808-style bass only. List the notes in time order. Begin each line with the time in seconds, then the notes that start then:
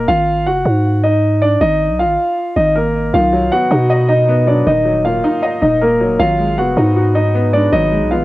0.08 G#1
0.46 F#1
0.65 G#2
1.61 G#1
1.90 B1
2.04 G#1
2.56 G#1
3.14 B1
3.71 B2
4.67 D#1
5.62 D#1
6.20 G#1
6.58 F#1
6.77 G#2
7.72 G#1
8.01 B1
8.15 G#1